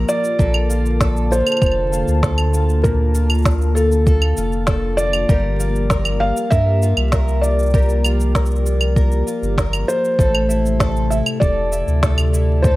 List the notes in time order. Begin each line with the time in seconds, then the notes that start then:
Already playing: A#2 F3 A#3 G4 A#4
0.09 F4 D5, shaker
0.24 shaker
0.39 A#1 A#2 D3 A4 A5, kick, shaker
0.54 claves
0.69 F4, shaker
0.86 shaker
1.00 A4, kick, snare, shaker
1.17 shaker
1.31 F4 C5, shaker
1.47 claves, shaker
1.52 claves
1.57 claves
1.61 F1 A4, kick, claves, shaker
1.66 claves
1.72 claves
1.92 F4, shaker
2.08 D2, shaker
2.23 A4, kick, snare, shaker
2.38 claves, shaker
2.53 F4, shaker
2.69 shaker
2.83 A#2 A#4, kick, shaker
3.15 F4, shaker
3.30 claves, shaker
3.34 shaker
3.38 shaker
3.42 kick, snare, shaker
3.46 shaker
3.50 shaker
3.54 shaker
3.58 shaker
3.62 shaker
3.75 F4 A4, shaker
3.92 shaker
4.07 A4, kick, shaker
4.22 claves
4.37 F1 F4, shaker
4.52 shaker
4.67 A4, kick, snare, shaker
4.97 F4 D5, shaker
5.13 claves, shaker
5.29 G1 F3 G3 G4 A#4, kick, shaker
5.60 F4, shaker
5.76 shaker
5.90 A#4, kick, snare, shaker
6.05 claves, shaker
6.20 F4 F5
6.37 shaker
6.50 G2 A#4 E5, kick, shaker
6.82 F4, shaker
6.97 C2, claves
7.12 A#4, kick, snare, shaker
7.28 shaker
7.41 F4 D5, shaker
7.59 shaker
7.63 shaker
7.66 shaker
7.70 G3, kick, shaker
7.74 A#4, shaker
7.78 shaker
7.82 shaker
7.85 shaker
7.89 shaker
8.04 F4, claves, shaker
8.20 shaker
8.35 A#4, kick, snare, shaker
8.46 shaker
8.51 shaker
8.56 shaker
8.66 F4, shaker
8.81 claves, shaker
8.96 A#4, kick, shaker
9.12 shaker
9.27 F4, shaker
9.43 G1, shaker
9.58 A#4, kick, snare, shaker
9.73 claves, shaker
9.88 F4 C5, shaker
10.05 shaker
10.18 A1 A2 C3 A3 G4 A4, kick, shaker
10.35 claves
10.49 E4, shaker
10.66 shaker
10.80 A4, kick, snare, shaker
10.97 shaker
11.10 E4 E5, shaker
11.26 claves, shaker
11.40 E1 A4 D5, kick, shaker
11.72 E4, shaker
11.88 D2, shaker
12.03 A4, kick, snare, shaker
12.18 claves, shaker
12.33 E4, shaker
12.62 A2 G3 A4 C5, kick, shaker